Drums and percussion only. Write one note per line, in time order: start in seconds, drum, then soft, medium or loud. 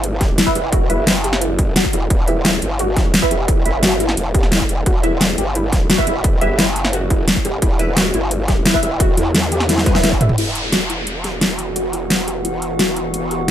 0.04 closed hi-hat medium
0.21 kick loud
0.21 snare soft
0.21 closed hi-hat medium
0.38 snare loud
0.38 closed hi-hat loud
0.47 kick medium
0.55 closed hi-hat medium
0.72 kick loud
0.72 closed hi-hat medium
0.90 closed hi-hat medium
1.07 snare loud
1.07 closed hi-hat medium
1.24 closed hi-hat medium
1.33 snare medium
1.41 closed hi-hat medium
1.59 kick loud
1.59 closed hi-hat medium
1.76 snare loud
1.76 closed hi-hat medium
1.84 kick medium
1.93 closed hi-hat medium
2.10 kick loud
2.10 closed hi-hat medium
2.28 closed hi-hat medium
2.45 snare loud
2.45 closed hi-hat medium
2.62 closed hi-hat medium
2.79 closed hi-hat medium
2.96 kick loud
2.96 snare soft
2.96 closed hi-hat medium
3.14 snare loud
3.14 closed hi-hat medium
3.22 kick medium
3.31 closed hi-hat medium
3.48 kick loud
3.48 closed hi-hat medium
3.66 closed hi-hat medium
3.83 snare loud
3.83 closed hi-hat medium
4.00 closed hi-hat medium
4.09 snare medium
4.17 closed hi-hat medium
4.34 kick loud
4.34 closed hi-hat medium
4.43 snare soft
4.52 snare loud
4.52 closed hi-hat medium
4.60 kick medium
4.69 closed hi-hat medium
4.86 kick loud
4.86 closed hi-hat medium
5.04 closed hi-hat medium
5.21 snare loud
5.21 closed hi-hat medium
5.38 closed hi-hat medium
5.55 closed hi-hat medium
5.72 kick loud
5.72 snare soft
5.72 closed hi-hat medium
5.90 snare loud
5.90 closed hi-hat medium
5.98 kick medium
6.07 closed hi-hat medium
6.24 kick loud
6.24 closed hi-hat medium
6.41 closed hi-hat medium
6.59 snare loud
6.59 closed hi-hat medium
6.76 closed hi-hat medium
6.85 snare medium
6.93 closed hi-hat medium
7.10 kick loud
7.10 closed hi-hat medium
7.28 snare loud
7.28 closed hi-hat medium
7.36 kick medium
7.45 closed hi-hat medium
7.62 kick loud
7.62 closed hi-hat loud
7.79 closed hi-hat medium
7.97 snare loud
7.97 closed hi-hat medium
8.14 closed hi-hat medium
8.31 closed hi-hat medium
8.48 kick loud
8.48 snare soft
8.48 closed hi-hat medium
8.66 snare loud
8.66 closed hi-hat medium
8.74 kick medium
8.83 closed hi-hat medium
9.00 kick loud
9.00 closed hi-hat loud
9.17 closed hi-hat medium
9.35 snare loud
9.35 closed hi-hat loud
9.52 closed hi-hat medium
9.60 snare medium
9.69 snare medium
9.69 closed hi-hat medium
9.78 snare medium
9.86 kick loud
9.86 closed hi-hat medium
9.86 high tom medium
9.95 snare medium
10.04 snare medium
10.04 closed hi-hat loud
10.12 kick medium
10.21 closed hi-hat medium
10.21 mid tom loud
10.29 mid tom medium
10.38 closed hi-hat medium
10.38 crash medium
10.55 closed hi-hat medium
10.72 snare loud
10.72 closed hi-hat medium
10.90 closed hi-hat medium
11.07 closed hi-hat medium
11.24 snare soft
11.24 closed hi-hat medium
11.41 snare loud
11.41 closed hi-hat medium
11.59 closed hi-hat medium
11.76 closed hi-hat medium
11.93 closed hi-hat medium
12.10 snare loud
12.10 closed hi-hat medium
12.28 closed hi-hat medium
12.45 closed hi-hat medium
12.62 closed hi-hat medium
12.79 snare loud
12.79 closed hi-hat medium
12.96 closed hi-hat medium
13.14 closed hi-hat medium
13.31 closed hi-hat medium